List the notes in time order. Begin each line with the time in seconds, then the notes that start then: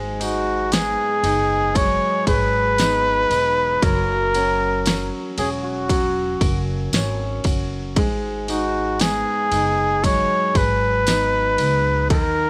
Already playing: G#1 G#2 F#3 G#3 D#4 F#4 G#4
0.20 D#4 F#4, ride, tambourine
0.72 G#3 B3 G#4, snare, ride, tambourine
1.23 F#1 D#4, ride, tambourine
1.75 F#3 G#3 C#5, kick, ride, tambourine
2.27 G#1 G#4 B4, kick, ride, tambourine
2.78 B3 D#4, snare, ride, tambourine
3.30 E1 D#4, ride, tambourine
3.82 F#1 F#3 A#4, kick, ride, tambourine
4.34 C#4 F#4, ride, tambourine
4.86 F#3 C#4, snare, ride, tambourine
5.38 E1 C#4 F#4 G#4, ride, tambourine
5.64 F#4
5.89 F#3 C#4, kick, ride, tambourine
6.41 F#1 A#4, kick, ride, tambourine
6.93 G#1 C#4, snare, ride, tambourine
7.44 F#1 F#4, kick, ride, tambourine
7.96 G#1 G#2 G#3 G#4, kick, ride
8.48 D#4 F#4, ride, tambourine
9.00 G#3 B3 G#4, snare, ride, tambourine
9.52 F#1 D#4, ride, tambourine
10.04 F#3 G#3 C#5, kick, ride, tambourine
10.55 G#1 G#4 B4, kick, ride, tambourine
11.07 B3 D#4, snare, ride, tambourine
11.58 C#2 D#4, ride, tambourine
12.10 D#2 D#3 A#4, kick, ride